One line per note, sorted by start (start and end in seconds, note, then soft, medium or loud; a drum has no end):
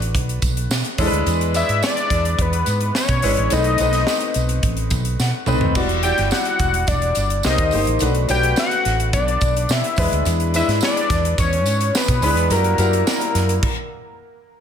0.00 0.15 A1 medium
0.00 1.01 A3 medium
0.00 0.99 D4 medium
0.00 1.01 F#4 medium
0.00 1.00 B4 medium
0.00 0.16 D5 medium
0.00 closed hi-hat soft
0.15 0.38 B1 medium
0.15 kick medium
0.15 closed hi-hat medium
0.29 closed hi-hat soft
0.42 0.66 B1 medium
0.42 kick medium
0.42 closed hi-hat medium
0.42 tambourine soft
0.57 closed hi-hat soft
0.70 0.82 B2 medium
0.70 snare loud
0.70 tambourine medium
0.84 closed hi-hat soft
0.98 1.10 E2 medium
0.98 1.45 G#3 loud
0.98 1.45 D4 medium
0.98 1.46 E4 medium
0.98 1.06 A4 medium
0.98 kick medium
0.98 open hi-hat medium
0.98 tambourine soft
1.06 1.49 B4 loud
1.12 1.24 D2 medium
1.12 closed hi-hat medium
1.26 1.62 E2 loud
1.26 closed hi-hat medium
1.26 tambourine soft
1.41 closed hi-hat soft
1.54 2.48 G#3 medium
1.54 2.48 D4 medium
1.54 2.48 E4 medium
1.54 2.48 D5 medium
1.54 1.82 E5 loud
1.54 closed hi-hat medium
1.54 tambourine soft
1.69 1.81 G#2 medium
1.69 closed hi-hat soft
1.82 2.43 D5 loud
1.82 snare medium
1.82 tambourine medium
1.97 closed hi-hat soft
2.10 2.34 E2 medium
2.10 kick medium
2.10 snare soft
2.10 closed hi-hat medium
2.10 tambourine soft
2.25 closed hi-hat medium
2.39 2.62 E2 medium
2.39 2.96 B4 medium
2.39 kick medium
2.39 closed hi-hat medium
2.53 closed hi-hat soft
2.66 2.90 G#2 medium
2.66 closed hi-hat medium
2.66 tambourine soft
2.81 closed hi-hat soft
2.95 3.54 C#5 medium
2.95 snare medium
2.95 tambourine medium
3.08 3.21 B2 medium
3.08 kick medium
3.08 closed hi-hat soft
3.22 3.35 G#1 medium
3.22 3.46 G#3 medium
3.22 3.46 D4 medium
3.22 3.47 E4 medium
3.22 3.47 B4 medium
3.22 open hi-hat medium
3.22 tambourine soft
3.37 3.49 A1 medium
3.37 closed hi-hat soft
3.50 3.75 B1 loud
3.50 3.75 A3 medium
3.50 3.75 C4 medium
3.50 3.75 D#4 medium
3.50 3.75 B4 medium
3.50 4.64 D#5 loud
3.50 closed hi-hat medium
3.50 tambourine soft
3.64 closed hi-hat soft
3.78 4.03 B1 medium
3.78 4.73 A3 medium
3.78 4.73 C4 medium
3.78 4.73 D#4 medium
3.78 4.74 B4 medium
3.78 closed hi-hat medium
3.78 tambourine soft
3.93 snare soft
3.93 closed hi-hat medium
4.07 snare medium
4.07 tambourine medium
4.20 closed hi-hat soft
4.34 4.59 B1 medium
4.34 closed hi-hat medium
4.34 tambourine soft
4.49 closed hi-hat medium
4.63 4.92 A1 medium
4.63 kick medium
4.63 closed hi-hat medium
4.77 closed hi-hat soft
4.90 5.15 B1 medium
4.90 kick medium
4.90 closed hi-hat medium
4.90 tambourine soft
5.05 closed hi-hat medium
5.19 5.31 B2 medium
5.19 5.46 F#5 medium
5.19 snare soft
5.19 tambourine medium
5.46 5.59 C2 medium
5.46 5.71 A3 medium
5.46 5.71 C4 medium
5.46 5.71 D#4 medium
5.46 5.71 B4 medium
5.46 5.74 B5 medium
5.46 mid tom medium
5.46 tambourine soft
5.61 5.74 D#2 medium
5.61 floor tom medium
5.75 6.11 E1 loud
5.75 5.99 G3 medium
5.75 5.99 E4 medium
5.75 5.99 F#4 medium
5.75 5.99 D5 medium
5.75 kick loud
5.75 crash medium
5.75 tambourine soft
5.89 closed hi-hat soft
6.03 6.97 G3 medium
6.03 6.97 E4 medium
6.03 6.97 F#4 medium
6.03 6.98 D5 medium
6.03 6.26 G5 loud
6.03 closed hi-hat medium
6.03 tambourine soft
6.18 6.30 G1 medium
6.18 snare soft
6.18 closed hi-hat soft
6.26 6.34 G5 medium
6.31 6.89 F#5 loud
6.31 snare medium
6.31 tambourine medium
6.45 closed hi-hat soft
6.59 6.83 E1 loud
6.59 kick medium
6.59 closed hi-hat medium
6.59 tambourine soft
6.74 closed hi-hat medium
6.87 7.12 E1 medium
6.87 7.44 D5 medium
6.87 kick medium
6.87 closed hi-hat medium
6.87 tambourine soft
7.02 closed hi-hat soft
7.15 7.40 G1 medium
7.15 closed hi-hat medium
7.15 tambourine soft
7.30 closed hi-hat soft
7.43 7.57 C2 medium
7.43 7.68 A#3 medium
7.43 7.68 D#4 medium
7.43 7.68 G4 medium
7.43 7.68 C5 medium
7.43 7.98 D#5 medium
7.43 snare medium
7.43 tambourine medium
7.58 7.70 D#2 medium
7.58 kick medium
7.58 closed hi-hat medium
7.71 7.85 G1 medium
7.71 7.96 A#3 medium
7.71 7.96 D#4 medium
7.71 7.97 G4 medium
7.71 7.97 C5 medium
7.71 open hi-hat medium
7.71 tambourine soft
7.87 7.99 A1 medium
7.87 closed hi-hat medium
7.99 8.25 B1 loud
7.99 8.24 A3 medium
7.99 8.24 D4 medium
7.99 8.25 F#4 medium
7.99 8.25 B4 medium
7.99 closed hi-hat loud
7.99 tambourine medium
8.15 closed hi-hat soft
8.28 8.53 B1 medium
8.28 9.22 A3 medium
8.28 9.22 D4 medium
8.28 9.22 F#4 medium
8.28 9.23 B4 medium
8.28 8.56 G5 loud
8.28 closed hi-hat medium
8.28 tambourine soft
8.43 closed hi-hat medium
8.56 9.11 F#5 loud
8.56 snare loud
8.56 tambourine medium
8.71 closed hi-hat soft
8.85 9.13 A1 medium
8.85 snare soft
8.85 closed hi-hat medium
9.00 closed hi-hat medium
9.13 9.37 B1 loud
9.13 9.73 D5 medium
9.13 kick medium
9.13 closed hi-hat medium
9.13 tambourine soft
9.28 closed hi-hat soft
9.41 9.65 B1 medium
9.41 kick medium
9.41 closed hi-hat medium
9.41 tambourine soft
9.57 closed hi-hat medium
9.69 9.81 B2 medium
9.69 10.27 E5 medium
9.69 snare loud
9.69 tambourine medium
9.84 closed hi-hat soft
9.96 10.09 E2 loud
9.96 10.45 G#3 medium
9.96 10.44 D4 medium
9.96 10.45 E4 medium
9.96 10.45 B4 medium
9.96 kick loud
9.96 open hi-hat medium
9.96 tambourine soft
10.12 10.24 D2 medium
10.12 closed hi-hat medium
10.25 10.61 E2 loud
10.25 closed hi-hat medium
10.25 tambourine medium
10.40 closed hi-hat soft
10.54 11.47 G#3 medium
10.54 11.48 D4 medium
10.54 11.48 E4 medium
10.54 11.48 B4 medium
10.54 10.68 E5 loud
10.54 closed hi-hat medium
10.54 tambourine soft
10.68 10.80 G#2 medium
10.68 snare soft
10.68 closed hi-hat soft
10.81 11.35 D5 loud
10.81 snare loud
10.81 tambourine medium
10.97 closed hi-hat medium
11.10 11.34 E2 medium
11.10 kick medium
11.10 snare soft
11.10 closed hi-hat medium
11.10 tambourine soft
11.25 closed hi-hat medium
11.38 11.66 E2 loud
11.38 11.98 C#5 medium
11.38 kick medium
11.38 closed hi-hat medium
11.38 tambourine soft
11.53 closed hi-hat soft
11.66 11.90 G#2 loud
11.66 closed hi-hat medium
11.66 tambourine soft
11.81 closed hi-hat medium
11.95 12.23 B4 medium
11.95 snare loud
11.95 tambourine medium
12.08 12.20 B2 medium
12.08 kick medium
12.08 closed hi-hat medium
12.21 12.36 D2 medium
12.21 12.46 G#3 medium
12.21 12.46 D4 medium
12.21 12.46 E4 medium
12.21 12.46 B4 medium
12.21 12.53 B4 loud
12.21 open hi-hat medium
12.21 tambourine soft
12.36 12.48 E2 medium
12.36 closed hi-hat medium
12.50 12.74 F#2 loud
12.50 12.74 G3 medium
12.50 12.74 E4 medium
12.50 12.75 F#4 medium
12.50 14.19 A#4 loud
12.50 12.75 A#4 medium
12.50 closed hi-hat medium
12.50 tambourine medium
12.64 closed hi-hat soft
12.78 13.02 F#2 medium
12.78 13.63 G3 medium
12.78 13.63 E4 medium
12.78 13.63 F#4 medium
12.78 13.63 A#4 medium
12.78 closed hi-hat medium
12.78 tambourine soft
12.93 closed hi-hat soft
13.07 snare loud
13.07 tambourine medium
13.21 closed hi-hat medium
13.35 13.58 F#2 loud
13.35 snare soft
13.35 closed hi-hat medium
13.35 tambourine soft
13.49 closed hi-hat medium
13.63 kick loud
13.63 crash medium